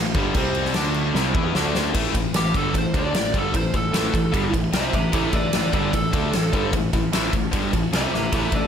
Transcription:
Already playing: fingered electric bass A1, distorted electric guitar A2 E3
0.14 fingered electric bass G1, distorted electric guitar G2 D3 G3, kick, crash
0.34 fingered electric bass C2, distorted electric guitar C3 G3 C4, kick, crash
0.55 crash
0.65 snare
0.74 fingered electric bass D2, distorted electric guitar D3 A3 D4, snare, crash
0.94 crash
1.15 fingered electric bass C2, distorted electric guitar C3 G3 C4, snare
1.35 fingered electric bass E2, distorted electric guitar E3 B3 E4, kick
1.55 fingered electric bass D2, distorted electric guitar D3 A3 D4, snare
1.75 snare
1.95 fingered electric bass A1, distorted electric guitar A2 E3 A3, kick, crash
2.14 fingered electric bass A1, distorted electric guitar A2 E3, kick, ride
2.34 fingered electric bass A1, distorted electric guitar A2 E3, lead electric guitar G4, snare, ride
2.54 fingered electric bass G1, distorted electric guitar G2 D3 G3, lead electric guitar A4, kick, ride
2.74 fingered electric bass A1, distorted electric guitar A2 E3, kick, ride
2.78 lead electric guitar C5
2.94 fingered electric bass D2, distorted electric guitar D3 A3 D4, kick, ride
2.99 lead electric guitar D5
3.14 fingered electric bass A1, distorted electric guitar A2 E3, snare, ride
3.34 fingered electric bass G1, distorted electric guitar G2 D3 G3, kick, ride
3.38 lead electric guitar A4
3.54 fingered electric bass A1, distorted electric guitar A2 E3, lead electric guitar C5, kick, ride
3.74 fingered electric bass A1, distorted electric guitar A2 E3, lead electric guitar A4, kick, ride
3.93 fingered electric bass A1, distorted electric guitar A2 E3 A3, snare, ride
4.13 fingered electric bass A1, distorted electric guitar A2 E3, kick, ride
4.32 fingered electric bass G1, distorted electric guitar G2 D3 G3, kick, ride
4.53 fingered electric bass A1, distorted electric guitar A2 E3, kick, ride
4.73 fingered electric bass C2, distorted electric guitar C3 G3 C4, lead electric guitar G4 E5, snare, ride
4.93 fingered electric bass A1, distorted electric guitar A2 E3, lead electric guitar G4 E5, kick, ride
5.12 fingered electric bass A1, distorted electric guitar A2 E3 A3, lead electric guitar G4 E5, kick, ride
5.33 fingered electric bass A1, distorted electric guitar A2 E3, lead electric guitar A4 D5, kick, ride
5.53 fingered electric bass A1, distorted electric guitar A2 E3, lead electric guitar A4 D5, snare, ride
5.72 fingered electric bass G1, distorted electric guitar G2 D3 G3, lead electric guitar A4 D5, kick, ride
5.93 fingered electric bass A1, distorted electric guitar A2 E3, lead electric guitar A4, kick, ride
6.13 fingered electric bass D2, distorted electric guitar D3 A3 D4, kick, ride
6.32 fingered electric bass A1, distorted electric guitar A2 E3, snare, ride
6.53 fingered electric bass G1, distorted electric guitar G2 D3 G3, kick, ride
6.73 fingered electric bass A1, distorted electric guitar A2 E3, kick, ride
6.93 fingered electric bass A1, distorted electric guitar A2 E3, kick, ride
7.13 fingered electric bass A1, distorted electric guitar A2 E3 A3, snare, ride
7.32 fingered electric bass A1, distorted electric guitar A2 E3, kick, ride
7.52 fingered electric bass G1, distorted electric guitar G2 D3 G3, kick, ride
7.73 fingered electric bass A1, distorted electric guitar A2 E3, kick, ride
7.92 fingered electric bass C2, distorted electric guitar C3 G3 C4, lead electric guitar G4, snare, ride
7.97 lead electric guitar E5
8.12 fingered electric bass A1, distorted electric guitar A2 E3, lead electric guitar G4 E5, snare
8.32 fingered electric bass A1, distorted electric guitar A2 E3 A3, lead electric guitar G4 E5, kick, ride
8.52 fingered electric bass A1, distorted electric guitar A2 E3, lead electric guitar A4 D5, kick, ride

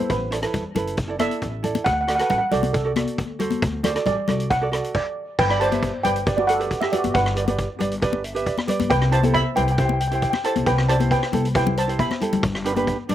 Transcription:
Already playing: ukulele E4 A4 B4
0.10 upright bass A1, steel pan B4, kick, closed hi-hat
0.31 ukulele E4 A4 D5, cross-stick, closed hi-hat
0.42 ukulele E4 A4 B4, cross-stick, closed hi-hat
0.54 upright bass E2, kick, closed hi-hat, low conga
0.75 upright bass F#1, ukulele E4 A4 B4, closed hi-hat, low conga
0.87 closed hi-hat
0.97 kick, closed hi-hat
1.07 ukulele E4 A4 D5
1.19 ukulele E4 A4 D5, steel pan E5, cross-stick, closed hi-hat, high conga
1.31 closed hi-hat
1.42 upright bass A1, kick, closed hi-hat
1.63 ukulele E4 A4 D5, closed hi-hat, low conga
1.75 closed hi-hat, high conga
1.84 upright bass D2, steel pan F#5, kick, closed hi-hat
1.93 steel pan F#5
2.01 steel pan F#5
2.07 ukulele F#4 A4 D5, steel pan F#5, cross-stick, closed hi-hat
2.15 ukulele F#4, steel pan F#5, cross-stick, closed hi-hat
2.20 ukulele A4 B4, steel pan F#5
2.30 upright bass A1, steel pan F#5, kick, closed hi-hat, low conga
2.38 steel pan F#5
2.51 upright bass C2, ukulele F#4 A4 C5, steel pan D5, closed hi-hat, low conga
2.63 closed hi-hat, high conga
2.73 steel pan A4, kick, closed hi-hat
2.84 ukulele F#4 A4 D5
2.96 ukulele F#4 A4 D5, cross-stick, closed hi-hat, high conga
3.07 closed hi-hat
3.18 upright bass D2, kick, closed hi-hat
3.39 ukulele F#4 A4 C5, closed hi-hat, low conga
3.50 closed hi-hat, high conga
3.62 upright bass D2, kick, closed hi-hat
3.83 ukulele F#4 A4 C5, steel pan D5, cross-stick, closed hi-hat, low conga
3.94 ukulele F#4 A4 D5, cross-stick, closed hi-hat
4.06 upright bass A1, steel pan D5, kick, closed hi-hat, low conga
4.28 upright bass C2, ukulele F#4 A4 D5, cross-stick, closed hi-hat, low conga
4.40 closed hi-hat
4.50 steel pan F#5, kick, closed hi-hat
4.61 ukulele F#4 A4 D5
4.72 ukulele F#4 A4 D5, cross-stick, closed hi-hat
4.84 closed hi-hat
4.95 steel pan D5, kick, crash
5.39 upright bass G1, steel pan B4 G5, kick, crash
5.50 steel pan D5 B5, cross-stick
5.59 ukulele G4 B4 D5, steel pan C5 A5, closed hi-hat
5.71 ukulele G4 B4 E5, closed hi-hat, high conga
5.83 kick, closed hi-hat
6.03 upright bass G1, ukulele G4 B4 D5, steel pan B4 G5, closed hi-hat, low conga
6.16 closed hi-hat
6.26 ukulele G4 B4 D5, kick, closed hi-hat
6.37 steel pan F#4 D5, high conga
6.47 steel pan A4 F#5, closed hi-hat
6.60 ukulele G4 B4 D5, closed hi-hat
6.71 kick, closed hi-hat
6.81 steel pan G4 E5, cross-stick, high conga
6.92 steel pan F#4 D5, ukulele G4 B4 D5, closed hi-hat, low conga
7.04 upright bass G1, closed hi-hat, high conga
7.14 upright bass G1, steel pan B4 F#5, kick, closed hi-hat
7.26 cross-stick
7.36 ukulele G4 B4 D5, closed hi-hat
7.47 ukulele G4 B4 D5, closed hi-hat, high conga
7.58 kick, closed hi-hat
7.79 upright bass G1, ukulele G4 B4 D5, closed hi-hat, low conga
7.92 closed hi-hat
8.02 ukulele G4 B4 D5, kick, closed hi-hat
8.13 high conga
8.24 ukulele E5, closed hi-hat
8.35 ukulele G4 B4 E5, closed hi-hat
8.46 ukulele D5, kick, closed hi-hat
8.58 cross-stick, high conga
8.67 ukulele G4 B4 D5, closed hi-hat, low conga
8.80 upright bass G2, closed hi-hat, high conga
8.90 upright bass C2, steel pan B4 G5, kick, closed hi-hat
9.02 cross-stick
9.11 ukulele E4 G4 C5, steel pan C5 A5, closed hi-hat
9.22 ukulele E4 G4 A4, closed hi-hat, high conga
9.34 steel pan E5 B5, kick, closed hi-hat
9.55 upright bass C2, ukulele E4 G4 C5, steel pan B4 G5, closed hi-hat, low conga
9.64 steel pan G5, closed hi-hat
9.71 steel pan G5
9.78 ukulele E4 G4 C5, steel pan G5, kick, closed hi-hat
9.85 steel pan G5
9.89 high conga
9.93 steel pan G5
10.00 steel pan G5, closed hi-hat
10.08 ukulele E4, steel pan G5, closed hi-hat
10.12 ukulele G4 C5, steel pan G5
10.22 steel pan G5, kick, closed hi-hat
10.30 steel pan G5, cross-stick, high conga
10.44 ukulele E4 G4 A4, steel pan C5 A5, closed hi-hat
10.56 upright bass C2, closed hi-hat, high conga
10.66 upright bass C2, steel pan B4 G5, kick, closed hi-hat
10.78 cross-stick
10.88 ukulele E4 G4 D5, steel pan C5 A5, closed hi-hat
10.99 ukulele E4 G4 C5, closed hi-hat, high conga
11.11 steel pan B4 G5, kick, closed hi-hat
11.23 cross-stick
11.32 upright bass C2, ukulele E4 G4 A4, closed hi-hat, high conga, low conga
11.45 closed hi-hat
11.54 ukulele E4 G4 C5, steel pan B4 G5, kick, closed hi-hat
11.67 high conga, low conga
11.77 steel pan C5 A5, closed hi-hat
11.87 ukulele E4 G4 C5, closed hi-hat
11.99 steel pan E5 B5, kick, closed hi-hat, high conga
12.11 cross-stick, high conga
12.20 ukulele E4 G4 A4, closed hi-hat, low conga
12.33 upright bass D2, closed hi-hat, low conga
12.43 upright bass G1, kick, closed hi-hat
12.55 cross-stick
12.65 ukulele D4 G4 B4, closed hi-hat
12.75 ukulele D4 G4 B4, closed hi-hat, high conga
12.87 kick, closed hi-hat
13.09 upright bass G1, ukulele D4 G4 D5, closed hi-hat, low conga

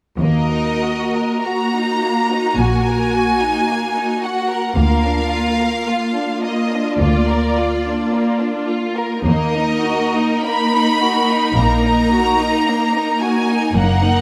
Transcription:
0.20 cello section D#2, double bass section D#2, viola section A#3 F#4, violin section A#3 A#4 D#5
0.53 violin section D#4
0.83 violin section F#4
1.15 violin section A#4
1.43 violin section F#4 A#5
1.75 violin section D#4
2.04 violin section A#3
2.32 violin section D#4
2.56 double bass section A#1, cello section A#2, violin section F#4 G#5
2.87 violin section A#4
3.14 violin section F#4
3.41 violin section D#4
3.68 violin section A#3
3.95 violin section D#4
4.22 violin section F#4 F#5
4.49 violin section A#4
4.75 double bass section D2, cello section D2, viola section A#3 F4, violin section A#3 A#4 F5
5.05 violin section D4
5.32 violin section F4
5.60 violin section A#4
5.88 violin section F4
6.15 violin section D4
6.44 violin section A#3 D#5
6.73 violin section D4
7.00 cello section D2, double bass section D2, violin section F4 D5
7.29 violin section A#4
7.57 violin section F4
7.86 violin section D4
8.13 violin section A#3
8.41 violin section D4
8.68 violin section F4
8.96 violin section A#4
9.25 double bass section D#2, cello section D#2, violin section A#3 A#4 D#5, viola section A#3 D#4
9.54 violin section D#4
9.85 violin section F#4
10.16 violin section D#4
10.46 violin section A#3 B5
10.76 violin section D#4
11.02 violin section F#4
11.30 violin section D#4
11.57 double bass section A#1, cello section A#2, violin section A#3 A#5
11.85 violin section D#4
12.13 violin section F#4
12.40 violin section D#4
12.68 violin section A#3
12.94 violin section D#4
13.20 violin section F#4 G#5
13.49 violin section D#4
13.73 double bass section F#1, cello section F#2, viola section A#3 D#4, violin section A#3 A#4 F#5
14.03 violin section D#4

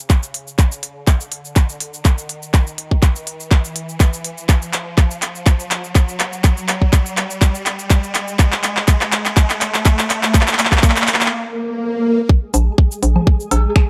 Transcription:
Already playing: riser
0.10 kick, clap, shaker
0.23 shaker
0.34 open hi-hat
0.47 shaker
0.59 kick, clap, shaker
0.72 shaker
0.83 open hi-hat
1.07 kick, clap, shaker
1.21 shaker
1.32 open hi-hat
1.45 shaker
1.56 kick, clap, shaker
1.69 shaker
1.80 open hi-hat
1.94 shaker
2.05 kick, clap, shaker
2.18 shaker
2.29 open hi-hat
2.43 shaker
2.54 kick, clap, shaker
2.67 shaker
2.78 open hi-hat
2.91 kick
3.03 kick, clap, shaker
3.16 shaker
3.27 open hi-hat
3.40 shaker
3.51 kick, clap, shaker
3.65 shaker
3.76 open hi-hat
3.89 shaker
4.00 kick, clap, shaker
4.13 shaker
4.24 open hi-hat
4.38 shaker
4.49 kick, clap, shaker
4.62 shaker
4.73 clap, open hi-hat
4.98 kick, clap, shaker
5.11 shaker
5.22 clap, open hi-hat
5.35 shaker
5.46 kick, clap, shaker
5.60 shaker
5.71 clap, open hi-hat
5.84 shaker
5.95 kick, clap, shaker
6.09 shaker
6.20 clap, open hi-hat
6.33 shaker
6.44 kick, clap, shaker
6.57 shaker
6.68 clap, open hi-hat
6.82 kick
6.93 kick, clap, shaker
7.06 shaker
7.17 clap, open hi-hat
7.30 shaker
7.42 kick, clap, shaker
7.55 shaker
7.66 clap, open hi-hat
7.79 shaker
7.90 kick, clap, shaker
8.03 shaker
8.15 clap, open hi-hat
8.28 shaker
8.39 kick, clap, shaker
8.52 clap, shaker
8.64 clap, open hi-hat
8.77 clap
8.88 kick, clap, shaker
9.01 clap, shaker
9.12 clap, open hi-hat
9.26 clap, shaker
9.37 kick, clap, shaker
9.50 clap, shaker
9.61 clap, open hi-hat
9.74 clap, shaker
9.85 kick, clap, shaker
9.99 clap, shaker
10.10 clap, open hi-hat
10.23 clap, shaker
10.34 kick, clap, shaker
10.41 clap
10.48 clap, shaker
10.53 clap
10.59 clap, open hi-hat
10.65 clap
10.72 kick, clap, shaker
10.78 clap
10.83 kick, clap, shaker
10.90 clap
10.96 clap, shaker
11.02 clap
11.08 clap, open hi-hat
11.14 clap
11.21 clap, shaker
11.26 clap
11.32 swell
12.29 synth texture G#3 G#4, kick
12.54 fm bass A#1, open hi-hat, low woodblock, shaker
12.78 kick
12.91 shaker
13.03 fm bass A#1, open hi-hat
13.16 low conga, low woodblock
13.27 kick
13.40 shaker
13.51 fm bass A#1, open hi-hat, cowbell
13.76 finger snap, kick, low woodblock

